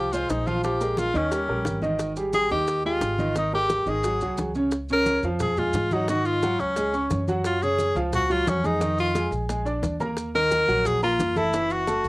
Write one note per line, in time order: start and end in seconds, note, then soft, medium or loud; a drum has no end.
0.00 0.26 C2 medium
0.00 0.14 G4 medium
0.13 0.41 G#3 medium
0.13 0.31 F4 medium
0.13 0.41 G#4 medium
0.13 0.41 C5 medium
0.13 high conga soft
0.13 maracas medium
0.29 1.09 A#1 medium
0.29 0.48 D#4 medium
0.29 high bongo medium
0.29 low bongo medium
0.29 maracas medium
0.47 0.61 F3 medium
0.47 0.64 F4 medium
0.47 0.61 F4 medium
0.47 0.61 F5 medium
0.47 high conga medium
0.47 maracas soft
0.64 0.78 F3 medium
0.64 0.78 F4 medium
0.64 1.00 G4 medium
0.64 0.78 F5 medium
0.64 high bongo medium
0.64 high conga soft
0.64 maracas medium
0.81 1.09 G#3 medium
0.81 1.09 G#4 medium
0.81 1.09 A#4 medium
0.81 high conga soft
0.81 maracas medium
0.97 1.18 F4 medium
0.97 high bongo medium
0.97 high conga medium
0.97 maracas medium
1.14 1.46 D#2 medium
1.14 1.28 D#3 medium
1.14 1.84 C#4 medium
1.14 1.29 D#4 medium
1.14 1.29 D#5 medium
1.14 high bongo soft
1.14 maracas soft
1.31 1.45 G3 medium
1.31 1.46 G4 medium
1.31 1.46 A#4 medium
1.31 high bongo medium
1.31 high conga soft
1.31 maracas medium
1.48 1.64 A#1 medium
1.48 1.77 G3 medium
1.48 1.77 G4 medium
1.48 1.77 A#4 medium
1.48 high conga soft
1.65 2.45 G#1 medium
1.65 high bongo medium
1.65 low bongo medium
1.65 high conga medium
1.65 maracas medium
1.82 2.10 D#3 medium
1.82 2.11 D#4 medium
1.82 2.11 D#5 medium
1.82 high bongo soft
1.82 high conga medium
1.82 maracas soft
1.99 high bongo medium
1.99 maracas medium
2.16 2.31 G3 medium
2.16 2.31 G4 medium
2.16 2.31 G#4 medium
2.16 high conga soft
2.16 maracas medium
2.33 2.48 G3 medium
2.33 2.48 G4 medium
2.33 2.50 G#4 loud
2.33 2.49 G#4 medium
2.33 high bongo soft
2.33 high conga medium
2.33 maracas medium
2.50 2.98 D#2 medium
2.50 2.79 D#3 medium
2.50 2.79 D#4 medium
2.50 2.83 G4 medium
2.50 2.79 D#5 medium
2.50 maracas soft
2.67 high bongo medium
2.67 high conga soft
2.67 maracas medium
2.84 3.13 G#3 medium
2.84 3.33 F4 medium
2.84 3.13 G4 medium
2.84 3.13 G#4 medium
2.84 high conga soft
3.01 3.81 G#1 medium
3.01 high bongo medium
3.01 low bongo medium
3.01 high conga soft
3.01 maracas medium
3.18 3.33 D#3 medium
3.18 3.33 D#4 medium
3.18 3.33 D#5 medium
3.18 high conga medium
3.18 maracas soft
3.35 3.50 D#3 medium
3.35 3.50 D#4 medium
3.35 3.53 D#4 medium
3.35 3.50 D#5 medium
3.35 high bongo medium
3.35 high conga soft
3.35 maracas medium
3.53 3.81 G#3 medium
3.53 3.81 G4 medium
3.53 3.90 G4 loud
3.53 3.81 A#4 medium
3.53 high bongo soft
3.70 high bongo medium
3.70 high conga medium
3.70 maracas medium
3.86 4.18 G#1 medium
3.86 4.01 D#3 medium
3.86 4.01 D#4 medium
3.86 4.39 G#4 medium
3.86 4.01 D#5 medium
3.86 high bongo soft
3.86 high conga soft
3.86 maracas soft
4.04 4.18 F#3 medium
4.04 4.19 F#4 medium
4.04 4.19 G#4 medium
4.04 high bongo medium
4.04 high conga soft
4.04 maracas medium
4.21 4.37 C2 medium
4.21 4.50 F#3 medium
4.21 4.50 F#4 medium
4.21 4.50 G#4 medium
4.21 high conga soft
4.21 maracas medium
4.38 5.17 C#2 medium
4.38 high bongo medium
4.38 low bongo medium
4.38 high conga medium
4.38 maracas medium
4.55 4.69 C#3 medium
4.55 4.70 C#4 medium
4.55 4.70 C#5 medium
4.55 high bongo soft
4.55 maracas soft
4.71 high bongo medium
4.71 maracas medium
4.89 5.18 C#3 medium
4.89 5.18 C#4 medium
4.89 5.23 A#4 loud
4.89 5.18 C#5 medium
4.89 high conga soft
4.89 maracas soft
5.06 high bongo medium
5.06 high conga loud
5.06 maracas medium
5.23 5.71 F2 medium
5.23 5.52 F3 medium
5.23 5.52 F4 medium
5.23 5.52 F5 medium
5.23 high bongo soft
5.23 high conga soft
5.23 maracas soft
5.40 5.60 G#4 medium
5.40 high bongo medium
5.40 high conga soft
5.40 low conga medium
5.40 maracas medium
5.57 5.86 G#3 medium
5.57 5.94 F4 medium
5.57 5.86 G#4 medium
5.57 5.86 G#5 medium
5.57 high bongo soft
5.57 high conga soft
5.57 low conga medium
5.57 maracas soft
5.73 6.53 G#2 medium
5.73 high bongo soft
5.73 low bongo medium
5.73 high conga medium
5.73 maracas medium
5.91 6.06 F#3 medium
5.91 6.09 D#4 medium
5.91 6.06 F#4 medium
5.91 6.06 F#5 medium
5.91 high bongo soft
5.91 high conga medium
5.91 maracas soft
6.08 6.37 D#3 medium
6.08 6.37 D#4 medium
6.08 6.27 F#4 medium
6.08 6.37 D#5 medium
6.08 high bongo medium
6.08 high conga soft
6.08 maracas medium
6.25 6.61 F4 loud
6.25 maracas soft
6.42 6.71 F#3 medium
6.42 6.71 F#4 medium
6.42 6.71 F#5 medium
6.42 high bongo medium
6.42 high conga medium
6.42 maracas medium
6.59 7.07 C#2 medium
6.59 7.11 C#4 medium
6.59 high bongo soft
6.59 high conga soft
6.59 maracas soft
6.76 6.91 G#3 medium
6.76 6.91 G#4 medium
6.76 6.91 G#5 medium
6.76 high bongo medium
6.76 high conga soft
6.76 maracas medium
6.93 7.22 C#4 medium
6.93 7.22 C#5 medium
6.93 7.22 C#6 medium
6.93 high bongo soft
6.93 high conga soft
6.93 maracas soft
7.10 7.90 F#2 medium
7.10 high bongo soft
7.10 low bongo medium
7.10 high conga medium
7.10 maracas medium
7.28 7.56 F#3 medium
7.28 7.56 F#4 medium
7.28 7.56 F#5 medium
7.28 high bongo soft
7.28 high conga medium
7.28 maracas soft
7.44 7.64 F4 medium
7.44 high bongo medium
7.44 maracas medium
7.62 7.90 C#3 medium
7.62 7.90 C#4 medium
7.62 7.96 G#4 loud
7.62 7.91 C#5 medium
7.62 high conga soft
7.62 maracas soft
7.79 high bongo soft
7.79 high conga medium
7.79 maracas medium
7.95 8.43 C#2 loud
7.95 8.24 F3 medium
7.95 8.24 F4 medium
7.95 8.24 F5 medium
7.95 high bongo soft
7.95 maracas soft
8.13 8.33 F#4 loud
8.13 high bongo medium
8.13 high conga soft
8.13 low conga medium
8.13 maracas medium
8.30 8.58 F#3 medium
8.30 8.50 F4 medium
8.30 8.58 F#4 medium
8.30 8.58 F#5 medium
8.30 high bongo soft
8.30 high conga soft
8.30 maracas soft
8.46 9.26 F2 medium
8.46 8.67 C#4 medium
8.46 high bongo soft
8.46 low bongo loud
8.46 high conga medium
8.46 maracas medium
8.64 8.78 G#3 medium
8.64 8.99 D#4 loud
8.64 8.78 G#4 medium
8.64 8.78 G#5 medium
8.64 high bongo soft
8.64 high conga medium
8.64 maracas soft
8.81 9.09 D#3 medium
8.81 9.09 D#4 medium
8.81 9.09 D#5 medium
8.81 high bongo medium
8.81 high conga soft
8.81 maracas medium
8.98 9.31 F4 medium
8.98 maracas soft
9.15 9.43 G#3 medium
9.15 9.43 G#4 medium
9.15 9.43 G#5 medium
9.15 high bongo medium
9.15 high conga loud
9.15 maracas medium
9.31 9.79 A#1 medium
9.31 high bongo soft
9.31 high conga soft
9.31 maracas soft
9.49 9.63 G#3 medium
9.49 9.63 G#4 medium
9.49 9.63 G#5 medium
9.49 high bongo medium
9.49 high conga soft
9.49 maracas medium
9.65 9.94 D4 medium
9.65 9.94 D5 medium
9.65 9.94 D6 medium
9.65 high bongo soft
9.65 high conga soft
9.65 maracas soft
9.82 10.62 D#2 medium
9.82 high bongo soft
9.82 low bongo medium
9.82 high conga medium
9.82 maracas medium
10.00 10.28 A#3 medium
10.00 10.28 A#4 medium
10.00 10.29 A#5 medium
10.00 high bongo soft
10.00 high conga medium
10.00 maracas soft
10.17 high bongo medium
10.17 high conga soft
10.17 maracas medium
10.35 10.62 D#3 medium
10.35 10.62 D#4 medium
10.35 10.88 A#4 loud
10.35 10.63 D#5 medium
10.35 maracas soft
10.51 high bongo medium
10.51 high conga loud
10.51 maracas medium
10.68 11.16 A#1 medium
10.68 10.96 F#3 medium
10.68 10.96 F#4 medium
10.68 10.96 F#5 medium
10.68 high bongo soft
10.68 maracas soft
10.85 11.03 G#4 loud
10.85 high bongo medium
10.85 high conga soft
10.85 low conga medium
10.85 maracas medium
11.02 11.30 A#3 medium
11.02 11.38 F4 medium
11.02 11.31 A#4 medium
11.02 11.31 A#5 medium
11.02 high bongo soft
11.02 maracas soft
11.19 11.99 F#1 medium
11.19 high bongo soft
11.19 low bongo medium
11.19 high conga medium
11.19 maracas medium
11.36 11.50 A3 medium
11.36 11.73 E4 medium
11.36 11.50 A4 medium
11.36 11.51 A5 medium
11.36 high bongo soft
11.36 high conga loud
11.36 maracas soft
11.53 11.82 E3 medium
11.53 11.82 E4 medium
11.53 11.82 E5 medium
11.53 high bongo medium
11.53 maracas medium
11.70 12.09 F#4 medium
11.70 high conga soft
11.70 maracas soft
11.87 12.09 A3 medium
11.87 12.09 A4 medium
11.87 12.09 A5 medium
11.87 high bongo medium
11.87 high conga medium
11.87 maracas medium
12.04 12.09 B1 medium
12.04 high bongo soft
12.04 high conga soft
12.04 maracas soft